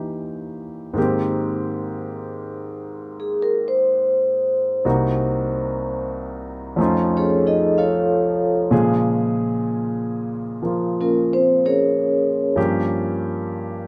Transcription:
Already playing: grand piano D#2 D#3 E3 C#4 D#4 E4 G4
0.94 grand piano G#2 D#3 A#3
0.98 grand piano C4 G4
3.20 vibraphone G#4
3.42 vibraphone A#4
3.68 vibraphone C5
4.85 grand piano C2 C3 A#3 D#4 F#4
6.76 grand piano F2 F3 A3 C#4 D#4
6.81 grand piano F4
7.17 vibraphone C#4 G#4 A4 C#5
7.47 vibraphone D#4 G#4 A4 D#5
7.78 vibraphone F4 A4 C#5 F5
8.71 grand piano A#2 C#3 F3 G#3 G#4
10.62 grand piano F3 A#3 F4
11.01 vibraphone A#3 C#4 F4 A#4
11.33 vibraphone C4 C5
11.66 vibraphone C#4 G#4 A#4 C#5
12.56 grand piano G2 F3 A#3 C#4 G4

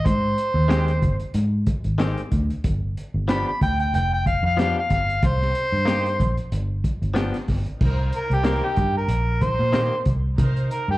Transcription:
0.06 fingered electric bass G#2, harmonica C5, kick, closed hi-hat
0.38 closed hi-hat
0.54 fingered electric bass D#2
0.68 clean electric guitar D#3 G#3 C4 G4, snare, closed hi-hat
0.88 closed hi-hat
1.02 fingered electric bass G1, kick, closed hi-hat
1.20 closed hi-hat
1.34 fingered electric bass G#2, closed hi-hat
1.67 kick, closed hi-hat
1.84 fingered electric bass G#1, closed hi-hat
1.98 clean electric guitar D#3 G#3 C4 G4, snare, closed hi-hat
2.18 closed hi-hat
2.32 fingered electric bass D2, kick, closed hi-hat
2.50 closed hi-hat
2.64 fingered electric bass G1, kick, closed hi-hat
2.97 closed hi-hat
3.14 fingered electric bass G1
3.28 clean electric guitar F3 B3 D4 G4, harmonica B5, snare, closed hi-hat
3.48 harmonica B5
3.61 fingered electric bass D2, harmonica G5, kick, closed hi-hat
3.79 harmonica G5, closed hi-hat
3.93 fingered electric bass F1, harmonica G5, closed hi-hat
4.14 harmonica G5
4.26 harmonica F5, kick, closed hi-hat
4.43 fingered electric bass F2, harmonica F5
4.57 clean electric guitar F3 B3 D4 G4, harmonica F5, snare, closed hi-hat
4.79 harmonica F5
4.90 fingered electric bass G1, harmonica F5, kick, snare, closed hi-hat
5.09 closed hi-hat
5.23 fingered electric bass C2, harmonica C5, kick, closed hi-hat
5.42 snare
5.55 closed hi-hat
5.72 fingered electric bass G2
5.85 clean electric guitar A#3 D#4 G4, snare, closed hi-hat
6.06 closed hi-hat
6.20 fingered electric bass A#1, kick, closed hi-hat
6.37 closed hi-hat
6.52 fingered electric bass G1, closed hi-hat
6.84 kick, closed hi-hat
7.02 fingered electric bass G1, closed hi-hat
7.14 clean electric guitar F3 B3 D4 G4, snare, closed hi-hat
7.34 snare, closed hi-hat
7.48 fingered electric bass G1, kick, snare, open hi-hat
7.66 closed hi-hat
7.79 fingered electric bass C2, string section D#4 A#4 C5, kick, crash
8.13 harmonica A#4, closed hi-hat
8.30 fingered electric bass C2, harmonica G4, closed hi-hat
8.44 clean electric guitar D#3 A#3 C4 G4, string section D#4 A#4 D#5, harmonica A#4, snare, closed hi-hat
8.65 harmonica G4
8.76 fingered electric bass G2, kick, closed hi-hat
8.97 harmonica A#4
9.08 fingered electric bass A#1, closed hi-hat
9.41 string section D#4 A#4 C5, harmonica C5, kick, closed hi-hat
9.59 fingered electric bass A#2
9.73 clean electric guitar D#3 A#3 C4 G4, snare, closed hi-hat
10.05 fingered electric bass C2, kick, closed hi-hat
10.37 fingered electric bass C3, string section D#4 A#4 C5, kick, closed hi-hat
10.56 closed hi-hat
10.71 harmonica A#4, closed hi-hat
10.88 fingered electric bass G2, harmonica G4

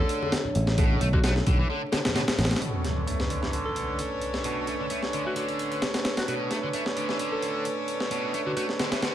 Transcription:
Already playing: distorted electric guitar D3, analog synth pad A3 D4 C#5
0.00 alto saxophone A4
0.09 closed hi-hat
0.22 high bongo, high conga
0.32 snare, closed hi-hat
0.45 low conga
0.55 picked electric bass A1, closed hi-hat, high bongo
0.67 snare
0.78 distorted electric guitar B2, kick, closed hi-hat, high bongo
0.90 high conga
1.01 picked electric bass B1, distorted electric guitar A3, closed hi-hat
1.13 distorted electric guitar D3, alto saxophone F#4, kick, high bongo
1.24 distorted electric guitar A3, alto saxophone F#4, snare, closed hi-hat
1.36 snare, high bongo
1.47 picked electric bass B1, distorted electric guitar D3, kick, closed hi-hat, high conga
1.59 distorted electric guitar E3
1.70 distorted electric guitar D3, high bongo
1.92 distorted electric guitar D3, snare, closed hi-hat, high bongo
2.05 snare, closed hi-hat, high conga, low conga
2.15 distorted electric guitar B2, snare, closed hi-hat
2.28 snare, closed hi-hat, high bongo
2.38 picked electric bass A1, snare, closed hi-hat
2.45 snare, closed hi-hat
2.51 snare, closed hi-hat, high bongo
2.56 snare, closed hi-hat
2.61 distorted electric guitar B2, analog synth pad A3 D4 B4 C#5, horn section C#4 D4 A4 B4 C#5, closed hi-hat, impact
2.84 distorted electric guitar A3, snare, closed hi-hat
2.97 distorted electric guitar D3
3.07 distorted electric guitar A3, closed hi-hat
3.20 snare
3.30 distorted electric guitar D3, closed hi-hat
3.42 distorted electric guitar E3, snare
3.53 distorted electric guitar D3, closed hi-hat
3.65 alto saxophone A4
3.76 closed hi-hat
3.99 closed hi-hat
4.21 closed hi-hat
4.34 snare
4.44 distorted electric guitar B2, closed hi-hat
4.67 distorted electric guitar A3, closed hi-hat
4.80 distorted electric guitar D3
4.90 distorted electric guitar A3, closed hi-hat
5.03 snare
5.13 distorted electric guitar D3, closed hi-hat
5.26 distorted electric guitar E3, alto saxophone F#4
5.36 distorted electric guitar D3, alto saxophone F#4, closed hi-hat
5.49 closed hi-hat
5.59 closed hi-hat
5.72 closed hi-hat
5.82 snare, closed hi-hat
5.94 snare, closed hi-hat
6.05 snare, closed hi-hat
6.17 alto saxophone F#4, snare, closed hi-hat
6.28 distorted electric guitar B2, horn section C#4 D4 A4 B4 C#5, alto saxophone F#4, closed hi-hat
6.51 distorted electric guitar A3, snare, closed hi-hat
6.63 distorted electric guitar D3
6.73 distorted electric guitar A3, closed hi-hat
6.86 snare
6.97 distorted electric guitar D3, closed hi-hat
7.09 distorted electric guitar E3, snare
7.19 distorted electric guitar D3, closed hi-hat
7.32 alto saxophone A4
7.42 closed hi-hat
7.65 closed hi-hat
7.88 closed hi-hat
8.00 snare
8.11 distorted electric guitar B2, closed hi-hat
8.34 distorted electric guitar A3, closed hi-hat
8.46 distorted electric guitar D3, alto saxophone F#4
8.57 distorted electric guitar A3, alto saxophone F#4, closed hi-hat
8.69 snare
8.79 distorted electric guitar D3, snare, closed hi-hat
8.92 distorted electric guitar E3, snare, closed hi-hat
9.02 distorted electric guitar D3, snare, closed hi-hat

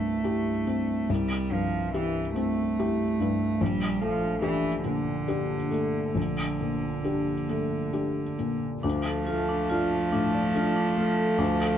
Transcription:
Already playing: felt piano C2 G2 C4 E4 G4, cello A3
0.24 felt piano E4 G4
0.67 felt piano C4
1.09 felt piano C2, cello G3
1.51 felt piano G2, cello F3
1.94 cello E3, felt piano E4 G4
2.36 cello A3, felt piano C4
2.79 felt piano E4 G4
3.20 felt piano G2
3.61 felt piano A#1, cello G3
4.01 cello F3, felt piano A3
4.42 cello E3, felt piano D4 G4
4.84 felt piano A#2, cello D3
5.28 felt piano D4 G4
5.71 felt piano A3
6.15 felt piano A#1, cello D3
6.61 felt piano A#2
7.04 felt piano D4 G4
7.49 felt piano A3
7.93 felt piano D4 G4
8.39 felt piano A#2
8.83 felt piano D2, cello F3, viola A3, vibraphone D4
9.05 vibraphone A4
9.27 felt piano A3, vibraphone F4
9.49 vibraphone D4
9.70 felt piano D4 F4, vibraphone F4
10.12 felt piano A2, vibraphone D4
10.34 vibraphone D5
10.55 felt piano D4 F4, vibraphone F4
10.76 vibraphone D4
10.97 felt piano A3, vibraphone F4
11.18 vibraphone A4
11.38 felt piano D2, vibraphone D4
11.59 vibraphone A4

